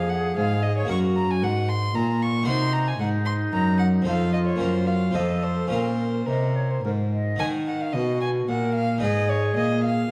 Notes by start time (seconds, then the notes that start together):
Already playing: F2 F#4 G#4 A#4 F5
0.09 F#5
0.37 G#2 F5
0.63 D#5
0.77 C#5
0.85 A#3 F#4 A#4
0.89 F#2 F#4 C#6
1.16 A#5
1.31 G#5
1.42 G#2 F#5
1.69 C6
1.94 A#2 F4 A#5
2.22 C#6
2.43 D#4 F#4 A#4
2.47 C3 D#4 C6
2.74 A#5
2.88 G#5
2.99 G#2 D#4 F#5
3.25 C6
3.52 F#2 A#5
3.79 F#5
4.02 F2 C4 D#4 A4
4.06 F2 F4 F5
4.33 D#5
4.47 C#5
4.56 A#3 C#4 A#4 C5
4.60 F#2
4.87 F5
5.11 F2 C4 F4 A4
5.15 F2 D#5
5.43 C5
5.67 A#2 C#4 F4 A#4 C5
5.72 A#2
6.27 C3 A#4 D#5
6.56 C#5
6.71 C5
6.84 G#2 A#4
7.13 D#5
7.36 D#4 F#4 A#4 G#5
7.41 D#3
7.67 F#5
7.81 F5
7.93 B2 F#4 D#5
8.21 G#5
8.49 A#2 A#4 F#5
8.75 F5
8.98 D#4 G#4 B4
9.02 G#2 G#4 D#5
9.30 C#5
9.56 A#2 D#5
9.84 F5